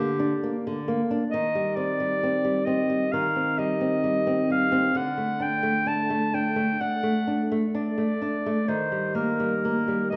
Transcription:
Already playing: nylon-string guitar D3 A#3, clarinet G4
0.19 nylon-string guitar D4
0.43 nylon-string guitar A#3
0.67 nylon-string guitar D3
0.88 nylon-string guitar A#3
1.11 nylon-string guitar D4
1.31 nylon-string guitar D#3, clarinet D#5
1.55 nylon-string guitar G3
1.75 nylon-string guitar C4, clarinet D5
2.00 nylon-string guitar G3
2.23 nylon-string guitar C4
2.45 nylon-string guitar G3
2.65 nylon-string guitar C4, clarinet D#5
2.90 nylon-string guitar G3
3.12 nylon-string guitar D#3, clarinet F5
3.36 nylon-string guitar C4
3.58 nylon-string guitar G3, clarinet D#5
3.81 nylon-string guitar C4
4.04 nylon-string guitar G3
4.27 nylon-string guitar C4
4.50 nylon-string guitar G3, clarinet F5
4.72 nylon-string guitar C4
4.95 nylon-string guitar D3, clarinet F#5
5.17 nylon-string guitar A3
5.40 nylon-string guitar D4, clarinet G5
5.63 nylon-string guitar A3
5.86 nylon-string guitar D4, clarinet A5
6.10 nylon-string guitar A3
6.34 nylon-string guitar D4, clarinet G5
6.56 nylon-string guitar A3
6.80 nylon-string guitar D4, clarinet F#5
7.03 nylon-string guitar A3
7.27 nylon-string guitar D4
7.52 nylon-string guitar A3
7.74 nylon-string guitar D4, clarinet D5
7.98 nylon-string guitar A3
8.22 nylon-string guitar D4
8.46 nylon-string guitar A3
8.68 nylon-string guitar D#3, clarinet C5
8.92 nylon-string guitar G3
9.15 nylon-string guitar A#3, clarinet A#4
9.40 nylon-string guitar G3
9.65 nylon-string guitar A#3
9.88 nylon-string guitar G3
10.10 nylon-string guitar A#3, clarinet D#5

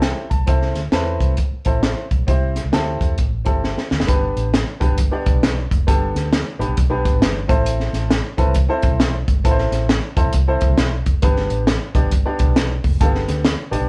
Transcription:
Already playing: fingered electric bass C2, grand piano C4 E4 G4 A4
0.02 grand piano G5, snare, closed hi-hat
0.30 fingered electric bass B1, grand piano A5, kick, closed hi-hat
0.38 fingered electric bass B1
0.47 fingered electric bass C2, grand piano C4 E4 A4 C5, kick, closed hi-hat
0.62 snare
0.75 fingered electric bass D2, snare, closed hi-hat
0.92 fingered electric bass E2, grand piano C4 E4 A4 B4, snare, closed hi-hat
1.20 fingered electric bass C2, kick, closed hi-hat
1.37 kick, closed hi-hat
1.51 muted fingered electric bass stroke
1.65 fingered electric bass A1, grand piano C4 E4 A4 C5, kick, closed hi-hat
1.83 snare, closed hi-hat
2.11 fingered electric bass B1, kick, closed hi-hat
2.19 fingered electric bass B1
2.27 fingered electric bass C2, grand piano C4 E4 G4 C5, kick, closed hi-hat
2.55 snare, closed hi-hat
2.64 fingered electric bass C2
2.72 fingered electric bass D2, grand piano C4 E4 G4 A4, snare, closed hi-hat
3.01 fingered electric bass E2, kick, closed hi-hat
3.18 fingered electric bass A1, kick, closed hi-hat
3.45 fingered electric bass G1, grand piano C4 E4 G4 A4, kick, closed hi-hat
3.64 snare
3.78 snare
3.91 fingered electric bass D2, snare
4.00 fingered electric bass F1, snare
4.07 fingered electric bass G1, grand piano B3 D4 G4 B4, kick, closed hi-hat
4.36 fingered electric bass A1, closed hi-hat
4.54 snare, closed hi-hat
4.80 fingered electric bass B1, grand piano B3 D4 G4 B4, kick, closed hi-hat
4.90 fingered electric bass G1
4.98 kick, closed hi-hat
5.11 grand piano B3 D4 G4 D5
5.26 fingered electric bass A1, kick, closed hi-hat
5.34 fingered electric bass B1
5.43 snare, closed hi-hat
5.71 fingered electric bass F1, kick, closed hi-hat
5.87 fingered electric bass G1, grand piano B3 D4 G4 A4, kick, closed hi-hat
6.15 fingered electric bass D2, snare, closed hi-hat
6.33 snare, closed hi-hat
6.59 fingered electric bass A1, grand piano B3 D4 G4 B4, closed hi-hat
6.68 fingered electric bass B1
6.77 fingered electric bass B1, kick, closed hi-hat
6.90 grand piano B3 D4 G4 B4
7.05 kick, closed hi-hat
7.12 fingered electric bass A1
7.20 fingered electric bass G1, snare, closed hi-hat
7.48 fingered electric bass A1, grand piano C4 E4 A4 C5, kick, closed hi-hat
7.66 closed hi-hat
7.80 snare
7.93 fingered electric bass A1, snare, closed hi-hat
8.10 snare, closed hi-hat
8.37 fingered electric bass B1, grand piano C4 E4 A4 B4, kick, closed hi-hat
8.47 fingered electric bass C2
8.54 kick, closed hi-hat
8.69 grand piano C4 E4 A4 C5
8.82 fingered electric bass A1, kick, closed hi-hat
8.92 fingered electric bass B1
9.00 snare, closed hi-hat
9.28 fingered electric bass G1, kick, closed hi-hat
9.44 fingered electric bass A1, grand piano C4 E4 A4 B4, kick, closed hi-hat
9.51 grand piano C5
9.58 snare
9.72 fingered electric bass A1, snare, closed hi-hat
9.89 snare, closed hi-hat
10.16 fingered electric bass E2, grand piano C4 E4 A4 C5, kick, closed hi-hat
10.25 fingered electric bass B1
10.33 fingered electric bass C2, kick, closed hi-hat
10.48 grand piano C4 E4 A4 C5
10.61 muted fingered electric bass stroke, kick, closed hi-hat
10.70 fingered electric bass C2
10.78 fingered electric bass B1, snare, closed hi-hat
11.06 fingered electric bass F1, kick, closed hi-hat
11.22 fingered electric bass G1, grand piano B3 D4 G4 B4, kick, closed hi-hat
11.36 snare
11.50 fingered electric bass A1, closed hi-hat
11.67 snare, closed hi-hat
11.95 fingered electric bass B1, grand piano B3 D4 G4 D5, kick, closed hi-hat
12.03 fingered electric bass G1
12.12 kick, closed hi-hat
12.25 grand piano B3 D4 G4 D5
12.39 fingered electric bass A1, kick, closed hi-hat
12.47 fingered electric bass B1
12.56 snare, closed hi-hat
12.84 fingered electric bass F1, kick, open hi-hat
13.00 fingered electric bass G1, grand piano A#3 D4 G4 A4, kick, closed hi-hat
13.05 grand piano B3
13.15 snare
13.28 fingered electric bass D2, snare, closed hi-hat
13.45 snare, closed hi-hat
13.71 fingered electric bass A1, grand piano B3 D4 G4 D5, closed hi-hat
13.80 fingered electric bass B1

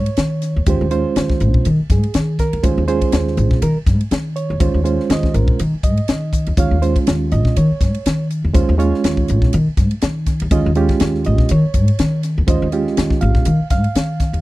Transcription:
Already playing: reed electric piano C#5
0.06 ride
0.17 upright bass D#3, snare, hi-hat pedal, ride
0.42 snare, hi-hat pedal, ride
0.56 upright bass D#2
0.66 upright bass D#2, reed electric piano G#3 C#4 F4 G4 C5, kick, hi-hat pedal, ride
0.81 upright bass D#2
0.91 reed electric piano G#3 C#4 F4 C5, hi-hat pedal, ride
1.16 upright bass D#2, snare, hi-hat pedal, ride
1.29 kick, snare
1.40 upright bass A#1, hi-hat pedal, ride
1.54 kick
1.65 upright bass D#3, hi-hat pedal, ride
1.80 muted upright bass stroke
1.90 upright bass G#2, reed electric piano G#4, kick, snare, hi-hat pedal, ride
2.03 ride
2.14 upright bass D#3, snare, hi-hat pedal, ride
2.39 reed electric piano A#4, kick, snare, hi-hat pedal, ride
2.53 upright bass D#2, ride
2.63 upright bass D#2, reed electric piano G#3 C#4 F4 G#4 C5, kick, hi-hat pedal, ride
2.78 upright bass D#2
2.88 reed electric piano G#3 C#4 F4 G#4 C5, hi-hat pedal, ride
3.02 kick, ride
3.12 upright bass D#2, snare, hi-hat pedal, ride
3.27 snare
3.37 upright bass A#1, hi-hat pedal, ride
3.51 kick, snare
3.62 upright bass D#3, reed electric piano A#4, hi-hat pedal, ride
3.75 muted upright bass stroke
3.86 upright bass G#2, kick, snare, hi-hat pedal, ride
4.01 ride
4.11 upright bass D#3, snare, hi-hat pedal, ride
4.36 reed electric piano C#5, hi-hat pedal, ride
4.50 upright bass D#2
4.60 upright bass D#2, reed electric piano G#3 C#4 F4 C5, kick, hi-hat pedal, ride
4.74 upright bass D#2
4.84 reed electric piano G#3 C#4 F4 C5, hi-hat pedal, ride
5.00 snare
5.10 upright bass D#2, reed electric piano D#5, snare, hi-hat pedal, ride
5.23 kick, snare
5.34 upright bass A#1, reed electric piano A#4, hi-hat pedal, ride
5.48 kick
5.59 upright bass D#3, hi-hat pedal, ride
5.73 muted upright bass stroke
5.83 upright bass G#2, reed electric piano D#5, kick, hi-hat pedal, ride
5.97 ride
6.08 upright bass D#3, snare, hi-hat pedal, ride
6.33 kick, hi-hat pedal, ride
6.47 upright bass D#2, ride
6.57 upright bass D#2, reed electric piano G#3 C#4 F4 C#5 F5, kick, hi-hat pedal, ride
6.71 upright bass D#2
6.82 reed electric piano G#3 C#4 F4 C5, hi-hat pedal, ride
6.96 kick, ride
7.07 upright bass D#2, snare, hi-hat pedal, ride
7.31 upright bass A#1, reed electric piano D#5, hi-hat pedal, ride
7.45 kick, snare
7.56 upright bass D#3, reed electric piano C#5, hi-hat pedal, ride
7.71 muted upright bass stroke
7.81 upright bass G#2, kick, snare, hi-hat pedal, ride
7.95 ride
8.06 upright bass D#3, snare, hi-hat pedal, ride
8.31 hi-hat pedal, ride
8.45 upright bass D#2
8.54 upright bass D#2, reed electric piano G#3 C#4 F4 C5, kick, hi-hat pedal, ride
8.69 upright bass D#2
8.78 reed electric piano G#3 C#4 F4 C#5, hi-hat pedal, ride
8.94 snare
9.04 upright bass D#2, snare, hi-hat pedal, ride
9.17 kick
9.28 upright bass A#1, hi-hat pedal, ride
9.42 kick, snare
9.53 upright bass D#3, hi-hat pedal, ride
9.68 muted upright bass stroke
9.77 upright bass G#2, kick, snare, hi-hat pedal, ride
9.91 ride
10.02 upright bass D#3, snare, hi-hat pedal, ride
10.26 kick, snare, hi-hat pedal, ride
10.40 upright bass D#2, ride
10.51 upright bass D#2, reed electric piano G#3 C#4 F4 D#5, kick, hi-hat pedal, ride
10.66 upright bass D#2
10.75 reed electric piano G#3 C#4 F4 G4, hi-hat pedal, ride
10.89 kick, snare, ride
11.00 upright bass D#2, snare, hi-hat pedal, ride
11.15 snare
11.24 upright bass A#1, reed electric piano D#5, hi-hat pedal, ride
11.38 kick, snare
11.49 upright bass D#3, reed electric piano C#5, hi-hat pedal, ride
11.65 muted upright bass stroke
11.74 upright bass G#2, kick, hi-hat pedal, ride
11.88 ride
11.99 upright bass D#3, snare, hi-hat pedal, ride
12.23 snare, hi-hat pedal, ride
12.38 upright bass D#2
12.47 upright bass D#2, reed electric piano G#3 C#4 F4 C5 D#5, kick, hi-hat pedal, ride
12.62 upright bass D#2
12.72 reed electric piano G#3 C#4 F4 G4, hi-hat pedal, ride
12.87 snare
12.97 upright bass D#2, snare, hi-hat pedal, ride
13.10 kick, snare
13.21 upright bass A#1, reed electric piano F5, hi-hat pedal, ride
13.35 kick, snare
13.45 upright bass D#3, hi-hat pedal, ride
13.60 muted upright bass stroke
13.70 upright bass G#2, reed electric piano F5, kick, snare, hi-hat pedal, ride
13.84 ride
13.95 upright bass D#3, snare, hi-hat pedal, ride
14.20 kick, snare, hi-hat pedal, ride
14.33 upright bass D#2, ride

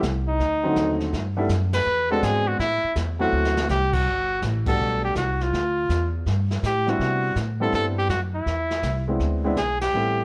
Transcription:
0.03 upright bass C2, kick, snare, hi-hat pedal
0.28 trumpet D#4
0.39 upright bass D2, brush sweep, kick, snare
0.63 grand piano D3 F#3 A3 C4 D#4
0.76 upright bass D#2, kick, snare, hi-hat pedal
1.00 snare
1.13 upright bass G2, brush sweep, kick, snare
1.37 grand piano G3 A3 B3 D4 E4
1.49 upright bass F#2, kick, snare, hi-hat pedal
1.73 trumpet B4, snare, ride
1.86 upright bass E2, brush sweep
2.11 grand piano G#3 B3 C4 D4 F#4, trumpet A4
2.22 upright bass G#2, trumpet G#4, kick, snare, hi-hat pedal
2.48 trumpet F#4
2.59 upright bass A2, trumpet E4, brush sweep, kick, snare
2.84 muted upright bass stroke
2.96 upright bass E2, kick, snare, hi-hat pedal
3.19 grand piano F#3 A3 B3 C4 E4, trumpet F#4
3.32 upright bass D2
3.45 snare
3.57 snare
3.69 upright bass C2, trumpet G4, snare, hi-hat pedal
3.93 trumpet F#4, kick, crash
4.05 upright bass G1, brush sweep
4.42 upright bass A1, kick, snare, hi-hat pedal
4.66 grand piano G3 A3 B3 D4 F#4, trumpet A4, kick, crash
4.79 upright bass B1, brush sweep
5.04 trumpet G4
5.15 upright bass C2, trumpet F#4, kick, snare, hi-hat pedal
5.40 trumpet F4, snare
5.53 upright bass D2, brush sweep, kick, snare
5.89 upright bass E2, kick, snare, hi-hat pedal
6.26 upright bass G2, brush sweep, kick, snare
6.51 snare
6.63 upright bass A2, trumpet G4, kick, snare, hi-hat pedal
6.87 grand piano G3 B3 C4 D4 E4, trumpet F#4, snare
6.99 upright bass C3, brush sweep, kick, snare
7.36 upright bass A2, kick, snare, hi-hat pedal
7.60 grand piano G3 B3 C4 D4 E4, trumpet A4
7.73 upright bass G2, trumpet A4, brush sweep, kick, snare
7.99 trumpet G4
8.09 upright bass F#2, trumpet F#4, kick, snare, hi-hat pedal
8.35 trumpet E4
8.46 upright bass E2, brush sweep, kick, snare
8.70 snare
8.83 upright bass C2, kick, snare, hi-hat pedal
9.08 grand piano G#3 B3 C4 D4 E4
9.20 upright bass D2, brush sweep, kick, snare
9.44 grand piano G#3 B3 C4 D4 E4
9.56 upright bass B1, trumpet G#4, kick, snare, hi-hat pedal
9.81 trumpet G4, snare, ride
9.93 upright bass A1, grand piano G3 A3 B3 C4 E4, brush sweep

